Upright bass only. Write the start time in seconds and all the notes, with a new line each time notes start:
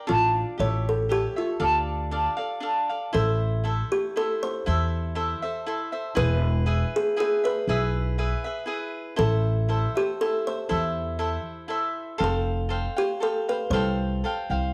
0.10 A1
0.60 A1
1.60 D2
3.14 A1
4.67 E2
6.17 E1
7.67 B1
9.19 A1
10.71 E2
12.20 F1
13.70 C2
14.50 C2